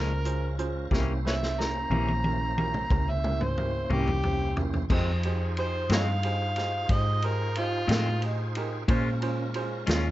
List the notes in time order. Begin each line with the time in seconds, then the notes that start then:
Already playing: C#2 A#2 F3 G#3 C#4 F4 G#4 A#4 C5
0.24 C#4 F4 G#4 C5, closed hi-hat
0.58 C#4 F4 G#4 C5, closed hi-hat
0.90 C2 C3 E3 A#3 C#4 E4 G4 A#4 C5, kick, snare
1.24 C#4 E4 G4 B4 C5 C#5 E5, snare
1.43 snare
1.58 C#4 E4 G4 A#4 A#5, snare
1.90 A#1 C3 E3 A#3 C#4 E4 G4 A#4, high tom
2.08 high tom
2.24 C#4 E4 G4 A#4, high tom
2.56 C#4 E4 G4 A#4, high tom
2.74 mid tom
2.90 C#2 C#4 E4 G4 A#4, kick, mid tom
3.10 E5
3.24 C#4 E4 G4 A#4, mid tom
3.41 C5, mid tom
3.58 C#4 E4 G4 A#4, mid tom
3.90 C2 C3 E3 A#3 C#4 E4 G4 A#4, mid tom
4.07 floor tom
4.23 C#4 E4 G4 C5, floor tom
4.57 C#4 E4 G4 A#4, floor tom
4.74 floor tom
4.89 F2 D#3 G#3 C4 D#4 F4 G4 G#4 C5, kick, crash
5.23 D#4 G4 G#4 C5, ride
5.57 D#4 G4 G#4 C5, ride
5.89 F2 G2 D#3 G#3 C4 D#4 G4 G#4 A#4 C#5 D#5 F5, snare, ride
6.23 D#4 G4 G#4 C5, ride
6.56 D#4 G4 G#4 C5, snare, ride
6.89 G#2 D#4 G4 G#4 C5 D#5, kick, ride
7.22 D#4 G4 G#4 A#4 C5, ride
7.55 D#4 F4 G4 G#4 C5, ride
7.88 F2 A2 D#3 G#3 C4 D#4 G4 G#4 A#4, snare, ride
8.22 D#4 G4 G#4 D#5, ride
8.55 D#4 G4 G#4 A#4, ride
8.88 A#2 G#3 C#4 F4 G#4 A#4 C5, kick, ride
9.22 C#4 F4 G#4 C5, ride
9.54 C#4 F4 G#4 C5, ride
9.87 D#2 A#2 G#3 C#4 F4 G#4 C#5, snare, ride